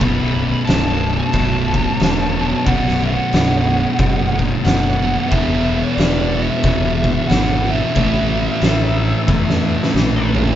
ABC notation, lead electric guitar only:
X:1
M:4/4
L:1/16
Q:"Swing" 1/4=91
K:Emix
V:1 name="Lead electric guitar"
b4 a3 a8- a | f2 f8 z2 f4 | e3 d3 e6 f2 e2- | e12- e2 z2 |]